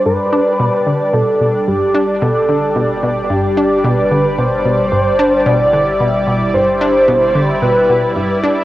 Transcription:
<<
  \new Staff \with { instrumentName = "Analog synth lead" } { \time 4/4 \key g \major \tempo 4 = 111 b'2 a'4 g'4 | a'4. r8 g'4 b'4 | c''2 d''4. r8 | c''2 b'4. r8 | }
  \new Staff \with { instrumentName = "Analog synth pad" } { \time 4/4 \key g \major << { <g d''>1~ | <g d''>1~ | <g d''>1~ | <g d''>1 | } \\ { d'1~ | d'1~ | d'2 e'2~ | e'1 | } >> }
  \new Staff \with { instrumentName = "Synth arpeggio sound" } { \clef bass \time 4/4 \key g \major g,16 r16 d'16 r16 b,8 d16 r16 b,8 b,16 r16 g,16 r16 d'16 r16 | b,8 d16 r16 b,8 b,16 r16 g,16 r16 d'16 r16 b,8 d16 r16 | b,8 b,16 r16 g,16 r16 d'16 r16 b,8 d16 r16 b,8 b,16 r16 | g,16 r16 d'16 r16 b,8 d16 r16 b,8 b,16 r16 g,16 r16 d'16 r16 | }
  \new Staff \with { instrumentName = "Analog synth bass" } { \clef bass \time 4/4 \key g \major g,,1~ | g,,1~ | g,,1~ | g,,1 | }
>>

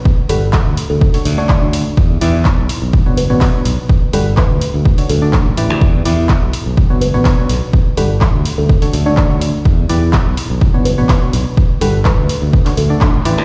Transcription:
<<
  \new Staff \with { instrumentName = "Kalimba" } { \time 4/4 \key g \lydian \tempo 4 = 125 r8 a'8 r8. a'16 r8. d''8. r8 | r2 r8 b'8. r8. | r8 a'8 b'8 r4 a'4 r8 | r2 r8 b'8. r8. |
r8 a'8 r8. a'16 r8. d''8. r8 | r2 r8 b'8. r8. | r8 a'8 b'8 r4 a'4 r8 | }
  \new Staff \with { instrumentName = "FM electric piano" } { \time 4/4 \key g \lydian r8 <g d' fis' g' b'>16 r4. <d d' fis' a' cis''>16 r16 <d d' fis' a' cis''>8 <d d' fis' a' cis''>16 r8 | r8 <e e' g' b' d''>16 r4. <b, d' fis' b' cis''>16 r16 <b, d' fis' b' cis''>8 <b, d' fis' b' cis''>16 r8 | r8 <g d' fis' g' b'>16 r4. <d d' fis' a' cis''>16 r16 <d d' fis' a' d''>16 r8 <e e' g' b' d''>8~ | <e e' g' b' d''>8 <e e' g' b' d''>16 r4. <b, d' fis' b' cis''>16 r16 <b, d' fis' b' cis''>8 <b, d' fis' b' cis''>16 r8 |
r8 <g d' fis' g' b'>16 r4. <d d' fis' a' cis''>16 r16 <d d' fis' a' cis''>8 <d d' fis' a' cis''>16 r8 | r8 <e e' g' b' d''>16 r4. <b, d' fis' b' cis''>16 r16 <b, d' fis' b' cis''>8 <b, d' fis' b' cis''>16 r8 | r8 <g d' fis' g' b'>16 r4. <d d' fis' a' cis''>16 r16 <d d' fis' a' d''>16 r8 <e e' g' b' d''>8 | }
  \new Staff \with { instrumentName = "Fingered electric bass" } { \clef bass \time 4/4 \key g \lydian r8 g,,8. d,16 r16 d,16 r8 d,4~ d,16 r16 | e,8 e,8. b,,16 r16 b,,16 fis,,8. a,,16 r8 b,,16 r16 | r8 g,,8. d,16 r16 d,16 r8 d,8. a,,16 a,,16 d,16 | e,8 e,8. b,,16 r16 b,,16 fis,,8. a,,16 r8 b,,16 r16 |
r8 g,,8. d,16 r16 d,16 r8 d,4~ d,16 r16 | e,8 e,8. b,,16 r16 b,,16 fis,,8. a,,16 r8 b,,16 r16 | r8 g,,8. d,16 r16 d,16 r8 d,8. a,,16 a,,16 d,16 | }
  \new DrumStaff \with { instrumentName = "Drums" } \drummode { \time 4/4 bd8 hho8 <hc bd>8 hho8 bd16 hho16 hho8 <hc bd>8 hho8 | bd8 hho8 <hc bd>8 hho8 bd8 hho8 <hc hho bd>8 hho8 | bd8 hho8 <hc bd>8 hho8 bd16 hho16 hho8 <hc bd>8 hho8 | bd8 hho8 <hc bd>8 hho8 bd8 hho8 <hc hho bd>8 hho8 |
bd8 hho8 <hc bd>8 hho8 bd16 hho16 hho8 <hc bd>8 hho8 | bd8 hho8 <hc bd>8 hho8 bd8 hho8 <hc hho bd>8 hho8 | bd8 hho8 <hc bd>8 hho8 bd16 <hc hho>16 hho8 <hc bd>8 hho8 | }
>>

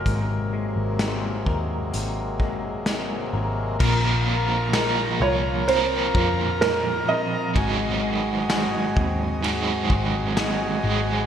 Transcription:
<<
  \new Staff \with { instrumentName = "Felt piano" } { \time 4/4 \key aes \mixolydian \tempo 4 = 64 bes'2. r4 | r4. des''8 c''4 bes'8 ees''8~ | ees''4. r2 r8 | }
  \new Staff \with { instrumentName = "Harmonium" } { \time 4/4 \key aes \mixolydian <c ges aes bes>1 | <f' bes' bes''>1 | <ges' ees'' aes''>1 | }
  \new Staff \with { instrumentName = "Clean electric guitar" } { \time 4/4 \key aes \mixolydian aes,8 aes8 c'8 bes'8 c'8 aes8 c'8 bes'8 | <bes, bes'>4 bes'8 f'8 c'8 f'8 bes'8 c'8 | <aes, aes'>8 aes8 aes'8 c'8 aes8 c'8 aes'8 aes8 | }
  \new Staff \with { instrumentName = "Overdriven electric guitar" } { \clef bass \time 4/4 \key aes \mixolydian r1 | <bes, f bes c' bes'>4 <f bes bes'>4 <bes, f bes c' bes'>2 | <aes, ees ges aes c' aes'>2 <aes, ees ges aes c' aes'>4. <ges aes c' aes'>8 | }
  \new Staff \with { instrumentName = "Picked electric bass" } { \clef bass \time 4/4 \key aes \mixolydian aes,,8. aes,,8. ees,8 aes,,4. aes,,8 | bes,,4. c,4 f,4 r8 | aes,,4. ees,4 aes,,4 aes,,8 | }
  \new DrumStaff \with { instrumentName = "Drums" } \drummode { \time 4/4 <hh bd>4 <hh sn>8 bd8 hh8 bd8 <hh sn>4 | <cymc bd>4 <cymr sn tamb>4 cymr8 bd8 <cymr sn tamb>4 | <bd cymr>4 <cymr sn tamb>8 bd8 cymr8 bd8 <cymr sn tamb>4 | }
>>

